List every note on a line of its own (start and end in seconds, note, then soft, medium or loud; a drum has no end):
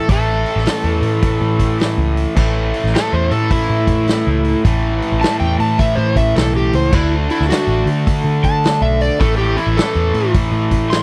0.00 0.11 E3 medium
0.00 0.12 A3 medium
0.00 0.10 A4 medium
0.09 0.43 A1 medium
0.09 2.36 A2 medium
0.09 2.37 E3 medium
0.09 1.77 A4 medium
0.09 kick loud
0.09 open hi-hat medium
0.13 2.39 A3 medium
0.46 open hi-hat medium
0.56 0.65 A1 medium
0.56 snare soft
0.65 snare loud
0.65 open hi-hat medium
0.84 1.01 E2 medium
1.01 1.38 A2 medium
1.01 open hi-hat medium
1.23 kick loud
1.23 open hi-hat medium
1.41 1.95 A2 medium
1.59 kick medium
1.59 open hi-hat medium
1.80 snare loud
1.80 open hi-hat medium
1.98 2.25 C#2 medium
2.17 open hi-hat medium
2.36 2.71 A1 medium
2.36 4.63 A2 medium
2.36 4.64 E3 medium
2.36 4.67 A3 loud
2.36 kick loud
2.36 crash loud
2.74 open hi-hat medium
2.84 2.93 A1 medium
2.84 snare soft
2.95 3.13 A4 loud
2.95 snare loud
2.95 open hi-hat medium
3.13 3.30 E2 medium
3.13 3.31 C5 medium
3.31 3.67 A2 medium
3.31 3.50 A4 medium
3.31 open hi-hat medium
3.51 4.61 E4 loud
3.51 kick loud
3.51 open hi-hat medium
3.70 4.23 A2 medium
3.87 kick medium
3.87 open hi-hat medium
4.08 snare loud
4.08 open hi-hat medium
4.27 4.53 C#2 medium
4.44 open hi-hat soft
4.65 4.99 A1 medium
4.65 6.92 A2 medium
4.65 6.92 E3 medium
4.65 6.93 A3 medium
4.65 kick loud
4.65 open hi-hat medium
5.02 open hi-hat soft
5.12 5.21 A1 medium
5.21 5.40 A5 medium
5.21 snare loud
5.21 open hi-hat medium
5.40 5.58 E2 medium
5.40 5.59 G5 medium
5.59 5.95 A2 medium
5.59 5.78 A5 medium
5.59 open hi-hat medium
5.79 5.97 E5 medium
5.79 kick loud
5.79 open hi-hat medium
5.96 6.15 A2 medium
5.96 6.15 C5 loud
6.16 6.34 A1 medium
6.16 6.35 E5 medium
6.16 kick medium
6.16 open hi-hat medium
6.36 6.69 B1 medium
6.36 6.54 A4 medium
6.36 snare loud
6.36 open hi-hat medium
6.56 6.74 G4 medium
6.73 6.91 C#2 medium
6.73 6.93 C5 medium
6.73 open hi-hat medium
6.92 7.27 D2 medium
6.92 9.19 D3 medium
6.92 9.21 A3 medium
6.92 9.21 D4 medium
6.92 7.12 E4 medium
6.92 kick loud
6.92 crash loud
7.30 7.49 E4 medium
7.30 open hi-hat medium
7.41 7.50 D2 medium
7.41 snare soft
7.49 7.85 F#4 loud
7.49 snare loud
7.49 open hi-hat medium
7.67 7.85 A1 medium
7.86 8.23 D3 medium
7.86 open hi-hat medium
8.07 kick loud
8.07 open hi-hat medium
8.24 8.78 D3 medium
8.44 8.82 A5 medium
8.44 kick medium
8.44 open hi-hat medium
8.64 snare loud
8.64 open hi-hat medium
8.82 9.09 B1 medium
8.82 9.01 E5 medium
9.01 9.20 D5 medium
9.01 open hi-hat medium
9.20 9.55 A1 loud
9.20 11.03 A2 medium
9.20 11.03 E3 medium
9.20 11.03 A3 medium
9.20 9.38 A4 loud
9.20 kick loud
9.20 open hi-hat medium
9.38 9.57 G4 loud
9.57 9.76 E4 medium
9.57 open hi-hat soft
9.67 9.77 A1 medium
9.77 10.32 A4 loud
9.77 snare loud
9.77 open hi-hat medium
9.95 10.13 E2 medium
10.13 10.50 A2 medium
10.13 open hi-hat medium
10.34 kick loud
10.34 open hi-hat medium
10.52 11.03 A2 medium
10.71 kick medium
10.71 open hi-hat medium
10.90 11.03 C6 loud
10.90 snare loud
10.90 open hi-hat medium